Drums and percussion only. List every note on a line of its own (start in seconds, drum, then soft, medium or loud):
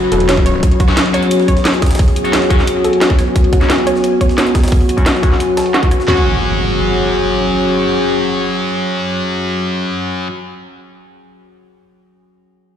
0.12 closed hi-hat medium
0.20 closed hi-hat soft
0.29 snare loud
0.29 closed hi-hat medium
0.37 kick loud
0.46 snare soft
0.46 closed hi-hat medium
0.63 kick loud
0.63 closed hi-hat medium
0.71 closed hi-hat soft
0.80 kick loud
0.80 closed hi-hat medium
0.88 snare soft
0.97 snare loud
0.97 closed hi-hat medium
1.06 closed hi-hat soft
1.14 closed hi-hat medium
1.23 closed hi-hat soft
1.31 closed hi-hat medium
1.40 snare soft
1.48 kick medium
1.48 closed hi-hat medium
1.57 snare soft
1.57 closed hi-hat soft
1.65 snare loud
1.65 closed hi-hat medium
1.74 closed hi-hat soft
1.82 kick loud
1.82 snare medium
1.82 closed hi-hat medium
1.86 snare medium
1.86 closed hi-hat medium
1.91 snare medium
1.91 closed hi-hat medium
1.95 snare medium
1.95 closed hi-hat medium
1.99 kick loud
1.99 closed hi-hat medium
1.99 open hi-hat medium
2.08 closed hi-hat soft
2.16 closed hi-hat medium
2.25 closed hi-hat soft
2.33 snare loud
2.33 closed hi-hat medium
2.42 snare soft
2.42 closed hi-hat soft
2.50 kick loud
2.50 closed hi-hat medium
2.59 snare soft
2.67 closed hi-hat medium
2.84 closed hi-hat medium
2.93 closed hi-hat soft
3.01 snare loud
3.01 closed hi-hat medium
3.10 kick loud
3.19 snare soft
3.19 closed hi-hat medium
3.36 kick loud
3.36 closed hi-hat medium
3.44 closed hi-hat soft
3.53 kick loud
3.53 closed hi-hat medium
3.61 snare soft
3.70 snare loud
3.70 closed hi-hat medium
3.78 closed hi-hat soft
3.87 closed hi-hat medium
3.95 snare soft
4.04 closed hi-hat medium
4.21 kick medium
4.21 closed hi-hat medium
4.29 snare soft
4.29 closed hi-hat soft
4.38 snare loud
4.38 closed hi-hat medium
4.46 closed hi-hat soft
4.55 kick loud
4.55 snare medium
4.55 closed hi-hat medium
4.64 snare medium
4.64 closed hi-hat medium
4.68 snare medium
4.68 closed hi-hat medium
4.72 kick loud
4.72 closed hi-hat medium
4.72 open hi-hat medium
4.81 closed hi-hat soft
4.89 closed hi-hat medium
4.98 kick medium
4.98 closed hi-hat soft
5.06 snare loud
5.06 closed hi-hat loud
5.06 closed hi-hat medium
5.15 snare soft
5.15 closed hi-hat soft
5.23 kick loud
5.23 closed hi-hat medium
5.32 snare soft
5.40 closed hi-hat loud
5.40 closed hi-hat medium
5.57 snare loud
5.57 closed hi-hat medium
5.66 closed hi-hat soft
5.74 snare loud
5.74 closed hi-hat medium
5.83 kick loud
5.83 closed hi-hat soft
5.91 closed hi-hat medium
6.00 snare soft
6.08 snare medium
6.08 clap medium
6.08 floor tom loud